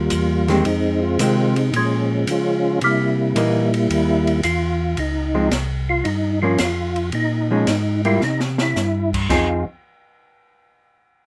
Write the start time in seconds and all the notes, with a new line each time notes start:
Already playing: D#2 G3 A#3 F4
0.10 E2, hi-hat pedal, ride
0.48 D#3 G#3 C4 G4, snare, ride
0.65 F2 G#3 C4 D#4, ride
1.03 F4
1.19 C3 D#3 G#3 C4 F4, hi-hat pedal, ride
1.56 D#4, ride
1.73 A#2 F3 G#3 C#4, ride
2.27 C#3 G#3 F4, hi-hat pedal, ride
2.32 C#4
2.81 C3 G3 A#3 E4, ride
3.35 A#2 E3 A#3 D#4, hi-hat pedal, ride
3.74 ride
3.90 D#2, ride
4.27 ride
4.43 E2 F4, hi-hat pedal, ride
4.97 C#2 D#4, ride
5.34 F3 G#3 C4
5.51 C2, snare, hi-hat pedal, ride
5.89 F4
6.04 G2 D#4, ride
6.42 F3 A#3 C#4 F4
6.58 F2 F4, snare, hi-hat pedal, ride
6.96 ride
7.12 A#2 D#4, ride
7.51 F3 G#3 C#4
7.67 G#2, snare, hi-hat pedal, ride
8.05 G3 A#3 E4 F4, ride
8.21 C3 D#4, snare
8.40 snare
8.58 E4, snare
8.76 G2, snare, hi-hat pedal
9.13 kick, crash
9.30 F2 F3 C4 D#4 F4 G#4, kick, snare, crash